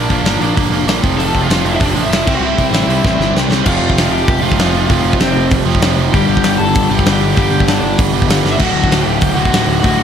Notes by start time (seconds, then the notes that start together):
Already playing: F3 D4 D5
0.10 A#1 A#2 F3 A#3, kick, open hi-hat
0.23 G1 A#2 F3 A#3, snare, open hi-hat
0.38 A#1 A#2 F3, open hi-hat
0.42 A#3
0.56 G1 A#2 F3 A#3, kick, open hi-hat
0.70 F1 A#2 F3 A#3, open hi-hat
0.86 A#1 A#2 F3 A#3, snare, open hi-hat
1.02 F1 F2 C3 F3, kick, open hi-hat
1.17 F1 F2 C3 F3 A4 A5, open hi-hat
1.34 F1 F2 C3 F3, kick, open hi-hat
1.41 F4 F5
1.47 F1 F2 C3 F3 F4 F5, snare, open hi-hat
1.64 F1 F2 C3 F3, open hi-hat
1.71 E4 E5
1.79 F1 F2 C3 F3 D4 D5, kick, open hi-hat
1.94 A1 F2 C3 F3, open hi-hat
2.02 E4 E5
2.09 F1 F2 C3 F3 E4 E5
2.13 snare, open hi-hat
2.26 C2 C3 G3 C4, kick, crash
2.35 F#4 F#5
2.41 C2 C3 G3 C4 E4 E5
2.58 C2 C3 G3 C4, kick, open hi-hat
2.71 A1 C3 G3 C4, snare, open hi-hat
2.87 C2 C3 G3 C4, open hi-hat
3.04 A1 C3 G3 C4, kick, snare
3.18 G1 C3 G3 C4, snare
3.34 C2 C3 G3 C4, snare
3.48 C2 C3 G3 C4, snare
3.65 F1 F2 C3 F3 F4 F5, kick, crash
3.80 F1
3.90 kick
3.94 F1, open hi-hat
3.98 snare
4.11 F1 G4 G5
4.28 F1, kick, open hi-hat
4.41 F1 F2 C3 F3 F4 F5
4.52 kick
4.57 F1 F2 C3, snare, open hi-hat
4.61 F3
4.73 F1
4.89 F1 F2 C3 F3 F4 F5, kick, open hi-hat
5.04 F1
5.13 kick
5.20 F1 C4 C5, snare, open hi-hat
5.36 F1
5.51 F1, kick, open hi-hat
5.65 F1 F2 C3 F3
5.75 kick
5.81 F1 F2 C3 F3, snare, open hi-hat
5.97 F1
6.12 G1 G2 D3 G3 G4 G5, kick, open hi-hat
6.28 G1
6.37 kick
6.43 G1, snare, open hi-hat
6.58 G1 A4 A5
6.75 G1, kick, open hi-hat
6.90 G1 G2 D3 G3 G4 G5
6.99 kick
7.06 G1 G2 D3 G3, snare, open hi-hat
7.20 G1
7.36 G1 G2 D3 G3 G4 G5, kick, open hi-hat
7.50 G1
7.60 kick
7.66 G1 D4 D5, snare, open hi-hat
7.81 G1
7.99 G1, kick, open hi-hat
8.13 G1 G2 D3 G3
8.22 kick
8.28 G1 G2 D3 G3, snare, open hi-hat
8.45 G1, snare
8.52 E5
8.58 D1 D2 A2 D3 F#4 F#5, kick, crash
8.74 D1
8.84 kick
8.90 D1, snare, open hi-hat
9.02 D1 G4 G5
9.21 D1, kick, open hi-hat
9.34 D1 D2 A2 D3 F#4 F#5
9.45 kick
9.50 D1 D2 A2 D3, snare, open hi-hat
9.67 D1
9.80 D2 A2 F#4 F#5
9.84 D1 D3, kick, open hi-hat
9.99 D1